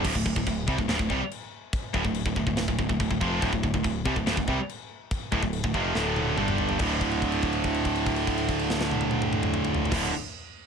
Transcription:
0.04 D1 D2 A2, kick, crash, china
0.15 D1 D2 A2, kick
0.25 D1 D2 A2, kick
0.36 D1 D2 A2, kick
0.47 D1 D2 A2, kick, china
0.67 C2 C3 G3, kick
0.78 D1 D2 A2, kick
0.88 D1 D2 A2, snare, china
0.99 D1 D2 A2, kick
1.09 C2 C3 G3, kick
1.31 china
1.73 kick, china
1.93 D1 D2 A2, kick
2.05 D1 D2 A2, kick
2.14 china
2.26 D1 D2 A2, kick
2.36 D1 D2 A2, kick
2.47 D1 D2 A2, kick
2.57 D1 D2 A2, snare, china
2.68 D1 D2 A2, kick
2.78 D1 D2 A2, kick
2.89 D1 D2 A2, kick
3.00 D1 D2 A2, kick, china
3.11 D1 D2 A2, kick
3.21 F1 F2 C3 F3, kick
3.42 D1 D2 A2, kick, china
3.53 D1 D2 A2, kick
3.63 D1 D2 A2, kick
3.74 D1 D2 A2, kick
3.83 D1 D2 A2, kick, china
4.05 C2 C3 G3, kick
4.16 D1 D2 A2, kick
4.26 D1 D2 A2, snare, china
4.37 D1 D2 A2, kick
4.47 C2 C3 G3, kick
4.69 china
5.11 kick, china
5.32 D1 D2 A2, kick
5.42 D1 D2 A2, kick
5.53 china
5.64 D1 D2 A2, kick
5.74 F1 F2 C3 F3, kick
5.95 D1 D2 A2 D3, snare
6.16 high tom
6.37 G1 G2 D3 G3, mid tom
6.48 mid tom
6.58 floor tom
6.69 floor tom
6.79 D1 D2 A2 D3, kick, crash
7.01 kick, crash
7.11 crash
7.22 kick, crash
7.32 crash
7.42 kick, crash
7.53 crash
7.64 kick, crash
7.74 crash
7.85 kick, crash
7.96 crash
8.06 kick, crash
8.16 crash
8.27 kick, crash
8.38 crash
8.49 kick, crash
8.59 crash
8.70 snare
8.81 snare
8.91 high tom
9.01 high tom
9.11 high tom
9.22 mid tom
9.33 mid tom
9.43 mid tom
9.54 mid tom
9.65 mid tom
9.74 floor tom
9.85 floor tom
9.90 D1 D2 A2 D3, kick, snare, crash

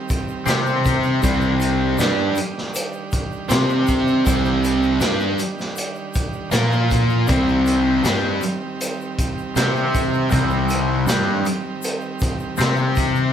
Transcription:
Already playing: D#3 G3 C4 G4
0.09 kick, closed hi-hat, shaker
0.28 shaker
0.46 C3 C4 G4 C5, snare, closed hi-hat, shaker
0.66 shaker
0.85 kick, closed hi-hat, shaker
1.03 shaker
1.23 C2 C3 G3 C4 D4, kick, closed hi-hat, shaker
1.42 shaker
1.60 closed hi-hat, shaker
1.98 G2 G3 D4 G4, snare, closed hi-hat, shaker
2.36 closed hi-hat, shaker
2.58 snare
2.74 closed hi-hat, shaker
2.93 shaker
3.12 kick, closed hi-hat, shaker
3.32 shaker
3.49 C3 C4 G4 C5, snare, closed hi-hat, shaker
3.69 shaker
3.87 kick, closed hi-hat, shaker
4.07 shaker
4.25 C2 C3 G3 C4, kick, closed hi-hat, shaker
4.45 shaker
4.64 closed hi-hat, shaker
4.83 shaker
5.00 G2 G3 D4 G4, snare, closed hi-hat, shaker
5.20 shaker
5.38 closed hi-hat, shaker
5.59 snare, shaker
5.76 closed hi-hat, shaker
5.95 shaker
6.14 kick, closed hi-hat, shaker
6.33 shaker
6.51 A#2 A#3 F4 A#4, snare, closed hi-hat, shaker
6.56 F3
6.72 shaker
6.91 kick, closed hi-hat, shaker
7.10 shaker
7.27 C2 C3 G3 C4 G4, kick, closed hi-hat, shaker
7.32 D#3 G3 C4
7.48 shaker
7.66 closed hi-hat, shaker
8.04 G2 G3 D4 G4, snare, closed hi-hat, shaker
8.42 closed hi-hat, shaker
8.81 closed hi-hat, shaker
9.01 shaker
9.19 kick, closed hi-hat, shaker
9.38 shaker
9.56 C3 C4 G4 C5, snare, closed hi-hat, shaker
9.76 shaker
9.95 kick, closed hi-hat, shaker
10.14 shaker
10.30 C2 C3 G3 C4, kick, closed hi-hat, shaker
10.50 shaker
10.69 closed hi-hat, shaker
11.06 G2 G3 D4 G4, snare, closed hi-hat, shaker
11.45 closed hi-hat, shaker
11.82 closed hi-hat, shaker
12.01 shaker
12.19 kick, closed hi-hat, shaker
12.39 shaker
12.57 C3 C4 G4 C5, closed hi-hat, shaker
12.61 snare
12.76 shaker
12.96 kick, closed hi-hat, shaker
13.15 shaker

